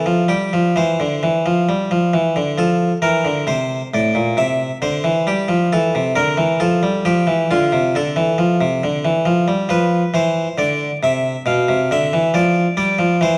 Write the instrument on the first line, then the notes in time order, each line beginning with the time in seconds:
harpsichord
Already playing: A4
0.06 F3
0.28 G3 G4
0.53 F3
0.76 E3 C5
1.00 D3
1.23 E3
1.46 F3
1.69 G3
1.91 F3
2.14 E3
2.36 D3
2.58 F3 A4
3.02 E3 A#4
3.25 D3
3.47 C3 C5
3.94 A2 D5
4.15 A#2
4.37 C3 E5
4.82 D3 C5
5.04 E3
5.27 G3 G4
5.48 F3
5.73 E3 A4
5.95 C3
6.16 D3 A#4
6.37 E3
6.60 F3 A4
6.83 G3
7.05 F3 G4
7.27 E3
7.51 D3 F4
7.72 C3
7.95 D3 A4
8.16 E3
8.38 F3
8.61 C3
8.84 D3
9.05 E3
9.26 F3
9.48 G3
9.69 F3 B4
10.14 E3 C5
10.58 D3 D5
11.03 C3 E5
11.46 B2 F5
11.68 C3
11.91 D3 E5
12.13 E3
12.34 F3 D5
12.77 G3 D5
12.99 F3
13.21 E3 C5